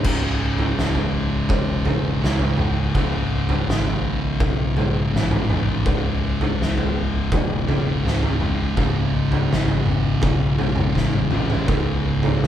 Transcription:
0.04 C#1 C#2 G#2 C#3, kick, floor tom, crash
0.58 floor tom
0.79 C#1, snare
0.95 floor tom
1.49 E1, kick, floor tom
1.85 C#2 G#2 C#3, floor tom
2.21 C#1 C#2 G#2 C#3, snare
2.39 floor tom
2.57 C#2 G#2 C#3, mid tom
2.94 C#1 C#2 G#2 C#3, kick, floor tom
3.33 C#1
3.49 floor tom
3.68 G#1, snare
3.85 floor tom
4.40 B1, kick, floor tom
4.76 C#2 G#2 C#3, floor tom
5.12 A1 C#2 G#2 C#3, snare
5.31 floor tom
5.48 C#2 G#2 C#3, mid tom
5.85 C#1 C#2 G#2 C#3, kick, floor tom
6.41 floor tom
6.59 C#1, snare
6.78 floor tom
7.32 E1, kick, floor tom
7.67 C#2 G#2 C#3, floor tom
8.04 C#1 C#2 G#2 C#3, snare
8.23 floor tom
8.39 C#2 G#2 C#3, mid tom
8.76 C#1 C#2 G#2 C#3, kick, floor tom
9.14 C#1
9.32 floor tom
9.51 G#1, snare
9.68 floor tom
9.86 mid tom
10.22 B1, kick, floor tom
10.58 C#2 G#2 C#3, floor tom
10.76 mid tom
10.94 A1 C#2 G#2 C#3, kick, snare
11.13 high tom
11.31 C#2 G#2 C#3, mid tom
11.50 floor tom
11.67 C#1 C#2 G#2 C#3, kick, floor tom
12.23 floor tom
12.41 C#1, snare

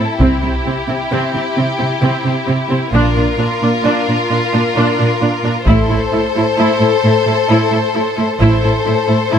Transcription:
Already playing: E4 A4
0.20 C2 C3 C4 G4, taiko
0.43 C3 C4
0.66 C3 C4
0.89 C3 C4
1.11 C3 C4
1.34 C3 C4
1.57 C3 C4
1.79 C3 C4
2.02 C3 C4
2.25 C3 C4
2.47 C3 C4
2.70 C3 C4
2.93 A#1 A#2 D4 F4 A#4
3.16 A#2 D4
3.38 A#2 D4
3.62 A#2 D4
3.84 A#2 D4
4.08 A#2 D4
4.31 A#2 D4
4.54 A#2 D4
4.76 A#2 D4
4.99 A#2 D4
5.21 A#2 D4
5.44 A#2 D4
5.67 A1 A2 E4 A4 C5, taiko
5.90 A2 E4
6.13 A2 E4
6.36 A2 E4
6.58 A2 E4
6.81 A2 E4
7.04 A2 E4
7.26 A2 E4
7.49 A2 E4
7.71 A2 E4
7.94 A2 E4
8.17 A2 E4
8.40 A1 A2 E4 A4 C5
8.63 A2 E4
8.85 A2 E4
9.07 A2 E4
9.31 A2 E4

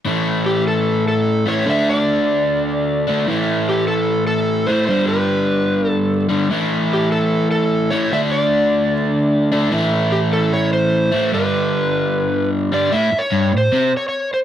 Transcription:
0.05 A2 E3 A3
0.46 G4
0.68 A4
1.08 A4
1.46 A2 E3 A3 C#5
1.66 D3 A3 D4 E5
1.89 D5
3.07 D3 A3 D4
3.27 A2 E3 A3
3.69 G4
3.88 A4
4.27 A4
4.67 E3 A3 C5
4.71 A2
4.87 G2 D3 C5
4.91 G3
5.08 B4
5.89 A4
6.29 G2 D3 G3
6.50 A2 E3 A3
6.93 G4
7.12 A4
7.51 A4
7.90 A2 E3 A3 C#5
8.12 D3 A3 D4 E5
8.32 D5
9.52 D3 A3 D4
9.71 A2 E3 A3
10.12 G4
10.33 A4
10.53 C#5
10.73 C5
11.12 A2 E3 A3
11.32 G2 D3 G3 B4
12.72 G2 D3 G3 D5
12.92 A2 E5
13.12 muted overdriven electric guitar stroke
13.19 C#5
13.32 G2
13.53 A2
13.58 C5
13.73 C3
13.97 C#5
14.09 C#5
14.34 C5

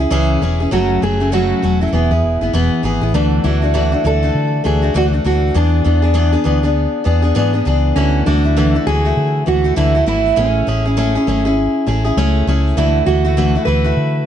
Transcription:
Already playing: E4
0.00 C#4 E4 G#4
0.10 C#2 C#3 E3 C#4 E4 G#4
0.41 E1 E3 C#4 E4 G#4
0.60 C#4 E4 G#4
0.71 F#1 F#2 C#3 F#3 A3 C#4 F#4
1.02 F#1 F#3 A3 C#4 F#4 G#4
1.20 F#3 A3 C#4 F#4
1.32 F#2 C#3 F#3 A3 C#4 F#4
1.62 E1 F#3 A3 C#4 F#4
1.81 F#3 A3 C#4 E4 F#4
1.92 E1 E3 B3 E4 G#4
2.11 E2 B3 E4 G#4
2.23 E1
2.41 F#1 B3 E4 G#4
2.53 E1 E3 B3 E4 G#4
2.83 G#1 E3 B3 E4 G#4
3.01 A1 B3 E4 G#4
3.14 D2 D3 E3 A3 D4 F#4
3.44 D2 E3 A3 D4 E4 F#4
3.62 A3 D4 F#4
3.74 D3 E3 A3 D4 F#4
3.92 A3 D4 F#4
4.04 D2 E3 A3 D4 F#4 A4
4.23 A3 D4 F#4
4.35 D3
4.64 D2 E3 A3 D4 F#4 G#4
4.82 A3 D4 F#4
4.94 D2 D3 E3 A3 D4 F#4
5.13 A3 D4 F#4
5.24 D2 E3 A3 D4 F#4
5.54 E2 E3 B3 D4 G#4
5.84 E2 E3 B3 D4 G#4
6.02 B3 D4 G#4
6.14 E3 B3 D4 G#4
6.32 B3 D4 G#4
6.44 D2 E3 B3 D4 G#4
6.63 B3 D4 G#4
7.04 E2 E3 B3 D4 G#4
7.22 B3 D4 G#4
7.35 G#2 E3 B3 D4 G#4
7.53 B3 D4 G#4
7.65 C#2 E3 B3 D4 G#4
7.96 D2 D3 E3 A3 C#4 E4 F#4
8.26 D2 E3 A3 D4 E4 F#4
8.44 A3 E4 F#4
8.57 D3 E3 A3 E4 F#4
8.75 A3 E4 F#4
8.87 D2 E3 A3 E4 F#4 G#4
9.05 A3 E4 F#4
9.17 D3
9.46 D2 E3 A3 E4 F#4
9.64 A3 E4 F#4
9.76 D2 D3 E3 A3 E4 F#4
9.95 A3 E4 F#4
10.06 G#1 E3 A3 E4 F#4
10.36 A1 A3 C#4 E4 G#4
10.67 A1 A3 C#4 E4 G#4
10.85 C#4 E4 G#4
10.97 A3 C#4 E4 G#4
11.15 C#4 E4 G#4
11.27 G#1 A3 C#4 E4 G#4
11.45 C#4 E4 G#4
11.86 A1 A3 C#4 E4 G#4
12.05 C#4 E4 G#4
12.17 C#2 A3 C#4 E4 G#4
12.47 C#2 A3 C#4 E4 G#4
12.77 D2 D3 E3 A3 E4 F#4
13.07 D2 E3 A3 E4 F#4
13.24 A3 E4 F#4
13.37 D3 E3 A3 E4 F#4
13.55 A3 E4 F#4
13.65 D2 E3 A3 E4 F#4 B4
13.84 A3 E4 F#4
13.97 D3

